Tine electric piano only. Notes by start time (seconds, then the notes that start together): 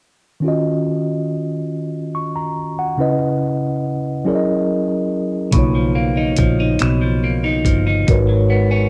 0.40 D#3 C#4
0.44 F4 F#4 D#5
2.15 C#6
2.36 A#5
2.79 F#5
2.97 C#3 C#4 E4 B4 D#5
4.25 F#3 C#4 E4 G#4 A#4 D5
4.35 D#5
5.51 C#3 A#3 D#4
5.57 F4 C#5
8.07 G#3 D#4 F#4 A#4 B4 C#5